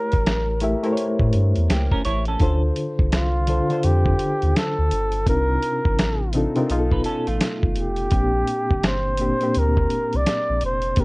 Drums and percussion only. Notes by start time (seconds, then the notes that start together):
0.12 kick, closed hi-hat
0.26 snare, closed hi-hat
0.60 closed hi-hat
0.84 closed hi-hat
0.97 closed hi-hat
1.20 kick
1.33 closed hi-hat
1.56 closed hi-hat
1.70 snare, closed hi-hat
1.92 kick
2.05 closed hi-hat
2.25 closed hi-hat
2.40 kick, closed hi-hat
2.76 closed hi-hat
2.99 kick
3.12 snare, closed hi-hat
3.47 closed hi-hat
3.70 closed hi-hat
3.83 closed hi-hat
4.06 kick
4.19 closed hi-hat
4.42 closed hi-hat
4.56 snare, closed hi-hat
4.91 closed hi-hat
5.12 closed hi-hat
5.27 kick, closed hi-hat
5.63 closed hi-hat
5.85 kick
5.99 snare, closed hi-hat
6.33 closed hi-hat
6.56 closed hi-hat
6.70 closed hi-hat
6.91 kick
7.04 closed hi-hat
7.27 closed hi-hat
7.41 snare, closed hi-hat
7.63 kick
7.76 closed hi-hat
7.96 closed hi-hat
8.11 kick, closed hi-hat
8.47 closed hi-hat
8.70 kick
8.83 snare, closed hi-hat
9.17 closed hi-hat
9.40 closed hi-hat
9.54 closed hi-hat
9.77 kick
9.90 closed hi-hat
10.13 closed hi-hat
10.26 snare, closed hi-hat
10.61 closed hi-hat
10.82 closed hi-hat
10.96 kick, closed hi-hat